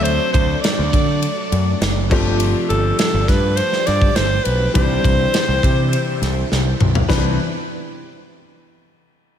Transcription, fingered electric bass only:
\new Staff \with { instrumentName = "Fingered electric bass" } { \clef bass \time 4/4 \key c \major \tempo 4 = 102 d,8 d,8 r16 d,16 d8. r16 fis,8 fis,,8 g,,8~ | g,,8 g,,8 r16 g,,16 g,8. r16 g,8 g,,8 b,,8 | c,8 c,8 r16 c,16 c8. r16 c,8 c,8 b,,8 | c,8 r2. r8 | }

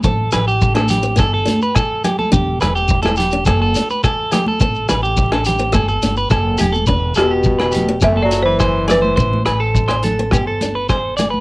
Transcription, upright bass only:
\new Staff \with { instrumentName = "Upright bass" } { \clef bass \time 4/4 \key e \minor \tempo 4 = 105 a,,8 a,,4. g,,8 r4. | e,,8 e,,4. fis,,8 r4. | a,,8 a,,4. g,,8 g,,8 fis,,8 e,,8 | e,,8 e,,4. fis,,2 |
a,,8 a,,4. g,,2 | }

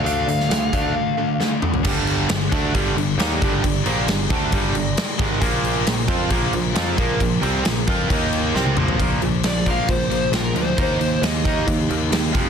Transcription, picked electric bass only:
\new Staff \with { instrumentName = "Picked electric bass" } { \clef bass \time 4/4 \key g \minor \tempo 4 = 134 d,8 d,8 d,8 d,8 r2 | g,,4 g,,8 d,8 g,,8 g,,8 ees,8 g,,8 | g,,8 bes,,8 g,,8 d,8 g,,8 g,,8 r8 aes,,8 | bes,,4 bes,,8 f,8 bes,,8 bes,,8 f,8 bes,,8 |
bes,,8 c,8 bes,,8 f,8 ees,4 c,8 bes,,8 | bes,,8 bes,,8 bes,,8 bes,,8 bes,,4 bes,,8 d,8 | ees,4 ees,4 ees,8 ees,8 ees,8 f,,8 | }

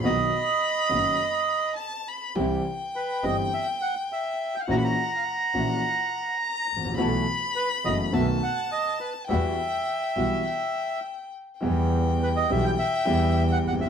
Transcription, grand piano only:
\new Staff \with { instrumentName = "Grand piano" } { \clef bass \time 4/4 \key e \minor \tempo 4 = 104 << { <b,, b, dis fis b fis'>8 r4 <fis,, fis, dis fis b fis'>8 r2 | <c, c e g c' g'>8 r4 <g,, g, e g c' g'>8 r2 | <ais,, ais, e ais cis' fis'>8 r4 <ais,, ais, e ais cis' fis'>8 r2 | <b,, b, e a b fis'>8 r4 <fis,, fis, e a b fis'>8 <b,, b, dis a b fis'>8 r4. |
<e, e g b fis'>8 r4 <b,, b, e g b fis'>8 r2 | <e, e g b g'>4. <b,, b, e g b g'>8 r8 <e, e g b g'>4. | } \\ { r1 | r1 | r2. r8 r32 gis,,32 a,,32 ais,,32 | r1 |
r1 | r2. r8 r32 fis,,32 g,,32 r32 | } >> }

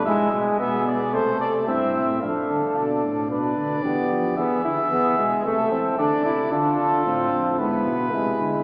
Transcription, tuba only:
\new Staff \with { instrumentName = "Tuba" } { \clef bass \time 4/4 \key d \minor \tempo 4 = 111 gis,8 b,8 b,4 c4 g,8 a,8 | f,8 d8 b,8 a,8 b,8 d8 e8 f8 | e8 d8 e8 b,8 c8 e8 d8 c8 | \key d \dorian d8 d8 a,8 f,8 gis,8 b,8 c8 d8 | }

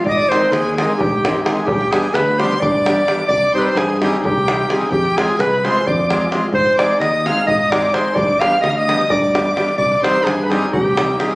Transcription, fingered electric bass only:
\new Staff \with { instrumentName = "Fingered electric bass" } { \clef bass \time 7/8 \tempo 4 = 130 aes,8 r8 ees,4 aes,4. | g,8 r8 d,4 g,4. | c,8 r8 g,4 c,4. | f,8 r8 c,4 f,4. |
aes,8 r8 ees,4 aes,4. | g,8 r8 d,4 g,4. | c,8 r8 g,4 c,4. | }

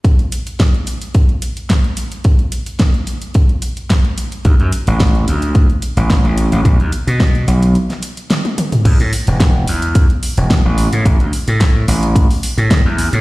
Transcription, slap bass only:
\new Staff \with { instrumentName = "Slap bass" } { \clef bass \time 4/4 \key d \major \tempo 4 = 109 r1 | r1 | d,16 fis,16 r16 a,,8. d,8. r8 a,,8 a,,8 a,,16 | b,,16 dis,16 r16 b,8. b,,8 r2 |
e,16 a,16 r16 e,,8. e,8. r8 e,,8 a,,8 a,16 | a,,16 d,16 r16 a,8. a,,8. r8 a,8 e,8 a,16 | }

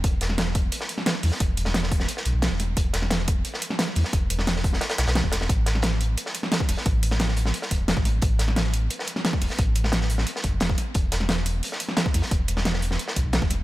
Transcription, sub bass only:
\new Staff \with { instrumentName = "Sub bass" } { \clef bass \time 4/4 \key e \phrygian \tempo 4 = 176 e,,2 r4. e,16 r16 | e,,2 r8 b,,16 b,,8 e,,8. | e,,2 r4. e,16 r16 | e,,2 r8 b,,16 b,,8 e,,8. |
a,,2 r4. e,,16 r16 | a,,2 r8 e,,16 e,,8 a,,8. | a,,2 r4. e,,16 r16 | a,,2 r8 g,,16 e,,8. r8 |
e,,2 r4. e,16 r16 | e,,2 r8 b,,16 b,,8 e,,8. | }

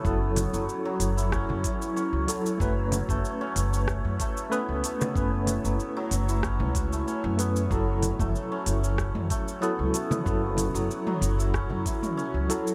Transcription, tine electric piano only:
\new Staff \with { instrumentName = "Tine electric piano" } { \time 4/4 \key fis \minor \tempo 4 = 94 <fis e' a'>2.~ <fis e' a'>8 <fis e' a'>8 | <a cis' b'>2. <a cis' b'>8 r8 | <a cis' b'>2.~ <a cis' b'>8 <a cis' b'>8 | <fis e' a'>2. <fis e' a'>8 r8 |
<fis e' a'>2.~ <fis e' a'>8 <fis e' a'>8 | }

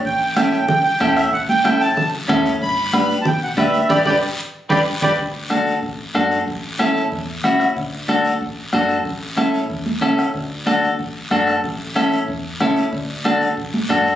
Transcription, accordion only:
\new Staff \with { instrumentName = "Accordion" } { \time 4/4 \key d \major \tempo 4 = 186 g''4 g''4 g''8 g''4 e''8 | fis''8 g''4 a''4 r4. | b''4 b''8.~ b''32 a''32 g''8 fis''8 e''4 | <d'' g'' b''>8 <d'' g'' b''>8 r4. <d'' g'' b''>8 r8 <d'' g'' b''>8 |
r1 | r1 | r1 | r1 |
r1 | r1 | r1 | }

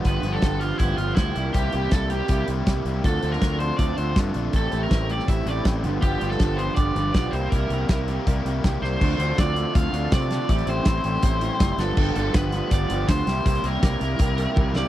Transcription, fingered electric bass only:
\new Staff \with { instrumentName = "Fingered electric bass" } { \clef bass \time 4/4 \key d \minor \tempo 4 = 161 g,,8 g,,8 g,,4 g,,8 g,,8 d,8 c,8 | c,8 c,8 c,4 c,8 c,8 c,8 c,8 | d,8 d,8 d,4 d,8 d,8 g,8 bes,,8 | a,,8 a,,8 a,,4 a,,8 a,,8 a,,8 g,,8 |
g,,8 g,,8 g,,4 g,,8 g,,8 b,,8 c,8 | c,8 c,8 c,4 c,8 c,8 c,8 c,8 | d,8 d,8 d,4 d,8 d,8 c4 | a,,8 a,,8 a,,8 a,,8 a,,4 fis,,8 g,,8 |
g,,8 g,,8 g,,4 g,,8 g,,8 d,8 c,8 | c,8 c,8 c,8 c,8 c,4 c,4 | }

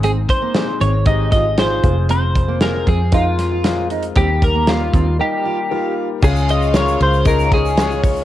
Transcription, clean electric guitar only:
\new Staff \with { instrumentName = "Clean electric guitar" } { \time 4/4 \key des \lydian \tempo 4 = 116 aes'8 c''4 des''8 ees''8 ees''8 c''4 | c''4 bes'8 aes'8 f'4. r8 | g'8 bes'8 f'4 g'4. r8 | aes'8 ees''8 des''8 c''8 bes'8 aes'4 r8 | }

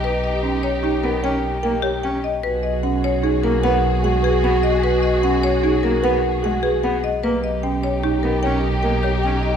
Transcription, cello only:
\new Staff \with { instrumentName = "Cello" } { \time 6/4 \key gis \minor \tempo 4 = 150 r2 r8 b8 cis'8 r8 ais8 r8 cis'8 r8 | r2 r8 ais8 b8 r8 gis8 r8 b8 r8 | r2 r8 ais8 b8 r8 gis8 r8 b8 r8 | ais8 r2 b8 cis'8 r8 ais8 r8 cis'8 r8 | }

